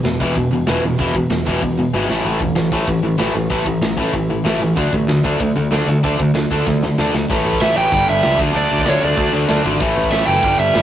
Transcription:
0.04 E1 E2 B2, snare, open hi-hat
0.20 E1 E2 B2 E3, kick
0.35 E1 E2 B2, kick, open hi-hat
0.51 E1 E2 B2
0.67 E1 E2 B2 E3, snare, open hi-hat
0.84 E1 E2 B2
0.98 E1 E2 B2 E3, kick, open hi-hat
1.14 E1 E2 B2, kick
1.30 E1 E2 B2, snare, open hi-hat
1.47 E1 E2 B2 E3, kick
1.62 E1 E2 B2, kick, open hi-hat
1.79 E2 B2
1.93 G#1 E2 B2 E3, snare
2.09 A1 A2 E3 A3, snare
2.24 A1 A2 E3 A3, open hi-hat
2.40 E1 A2 E3, kick
2.55 A1 A2 E3, snare, open hi-hat
2.72 A1 A2 E3 A3, kick
2.87 A1 A2 E3, kick, open hi-hat
3.03 A1 A2 E3
3.18 A1 A2 E3 A3, snare, open hi-hat
3.35 A1 A2 E3
3.50 A1 A2 E3 A3, kick, open hi-hat
3.65 A1 A2 E3, kick
3.81 A1 A2 E3, snare, open hi-hat
3.97 A1 A2 E3 A3, kick
4.13 A1 A2 E3, kick, open hi-hat
4.30 A2 E3
4.44 A1 A2 E3 A3, snare, open hi-hat
4.60 A1 A2 E3
4.76 D2 D3 A3 D4, kick, open hi-hat
4.93 A1 D3 A3, kick
5.07 D2 D3 A3, snare, open hi-hat
5.24 D2 D3 A3 D4, kick
5.40 D2 D3 A3, kick, open hi-hat
5.56 D2 D3 A3
5.71 D2 D3 A3 D4, snare, open hi-hat
5.86 D2 D3 A3
6.03 D2 D3 A3 D4, kick, open hi-hat
6.19 D2 D3 A3, kick
6.34 D2 D3 A3, snare, open hi-hat
6.51 D2 D3 A3 D4, kick
6.66 D2 D3 A3, kick, snare
6.83 D3 A3, snare
6.98 D2 D3 A3 D4, snare
7.13 D2 D3 A3, snare
7.30 A1 A2 E3 A3, kick, crash
7.45 A1, crash
7.53 kick
7.61 A1 A2 E3 A3 E5, snare, crash
7.76 A1 A2 E3 A3 G5, crash
7.92 G1 G2 D3 G3, kick, crash
8.08 G1 E5, crash
8.22 C#2 G2 D3 G3, snare, crash
8.38 D2 D3 A3 D4, kick, crash
8.54 D2 D3 A3 D4 D5, crash
8.70 D2, crash
8.78 D5, kick
8.85 D2 D3 A3 D4 C#5, snare, crash
9.02 D2 D3 A3 D4 D5, crash
9.17 D2 D3 A3 D4, kick, crash
9.33 D2, crash
9.48 D2 D3 A3 D4, snare, crash
9.63 G#1 D3 A3 D4, crash
9.80 A1 A2 E3 A3, kick, crash
9.96 A1, crash
10.04 kick
10.11 A1 A2 E3 A3 E5, snare, crash
10.27 F#1 A2 E3 A3 G5, crash
10.42 G1 G2 D3 G3, kick, crash
10.58 G1 E5, crash
10.74 G1 G2 D3 G3, snare, crash

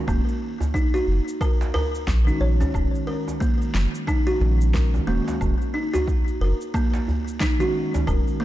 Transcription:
0.08 D#1 D#3 G#3 A#3 C#4 F#4, kick, cabasa, low woodblock
0.28 cabasa
0.60 djembe tone, djembe bass, cabasa
0.74 D#4, kick, cabasa
0.94 F#4, cabasa
1.07 F#1
1.28 cabasa
1.41 A#4, kick, cabasa, low woodblock
1.61 djembe slap, cabasa
1.74 A#4, djembe slap, djembe bass
1.95 cabasa
2.07 A#1, kick, snare, cabasa
2.25 D#3 G#3 C#4 D#4, cabasa
2.29 F#4
2.40 A#1 C#5
2.60 C#4, djembe slap, djembe tone, djembe bass, cabasa
2.74 D#1, kick, cabasa, low woodblock
2.95 cabasa
3.07 A#4, djembe slap
3.28 djembe tone, cabasa
3.40 A#3, kick, cabasa
3.62 cabasa
3.74 F#1, snare
3.95 cabasa
4.07 D#4, kick, cabasa, low woodblock
4.27 F#4, cabasa
4.40 A#1 D#3 G#3 C#4 F#4, djembe slap
4.61 cabasa
4.74 A#4, kick, snare, cabasa
4.94 djembe tone, cabasa
5.07 D#1 D#3 G#3 A#3 C#4 F#4
5.28 djembe slap, djembe tone, cabasa
5.40 D#1 D#3 G#3 C#4 F#4, kick, cabasa, low woodblock
5.61 cabasa
5.74 D#4
5.94 F#4, djembe tone, djembe bass, cabasa
6.08 kick, cabasa
6.28 cabasa
6.41 F#1 A#4
6.61 cabasa
6.74 A#3, kick, cabasa, low woodblock
6.94 djembe slap, cabasa
7.08 djembe bass
7.28 cabasa
7.40 D#4, kick, snare, cabasa
7.59 D#3 G#3 C#4 F#4, cabasa
7.94 djembe slap, djembe tone, djembe bass, cabasa
8.07 D#1 A#4, kick, cabasa, low woodblock
8.27 cabasa
8.40 A#3, djembe slap

